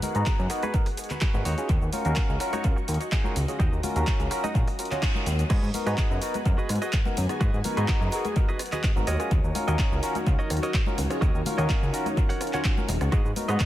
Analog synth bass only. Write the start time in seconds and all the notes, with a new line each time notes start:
0.15 G#2
0.39 F#2
1.34 G#1
1.45 D#2
1.70 D#2
1.82 D#2
2.06 D#2
2.29 C#2
2.65 C#2
2.88 D#2
3.36 C#2
3.60 D#2
3.72 D#2
3.96 D#2
4.20 C#2
4.55 A#1
5.26 D#2
5.51 G#2
5.63 G#2
5.87 G#2
6.11 F#2
6.46 F#2
6.70 G#2
7.18 F#2
7.41 G#2
7.54 G#2
7.77 G#2
8.01 F#2
8.96 G#1
9.08 D#2
9.31 D#2
9.44 D#2
9.68 D#2
9.92 C#2
10.27 C#2
10.51 D#2
10.98 C#2
11.22 D#2
11.35 D#2
11.58 D#2
11.83 C#2
12.89 D#1
13.01 C#2
13.13 G#2
13.25 G#2
13.49 G#2